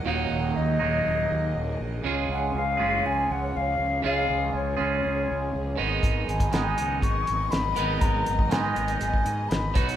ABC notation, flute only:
X:1
M:4/4
L:1/16
Q:1/4=120
K:Abdor
V:1 name="Flute"
g4 e8- e2 z2 | z2 g2 f4 a2 g2 f4 | f4 d8- d2 z2 | z2 a2 a4 d'4 c'4 |
b4 a4 a4 c'3 z |]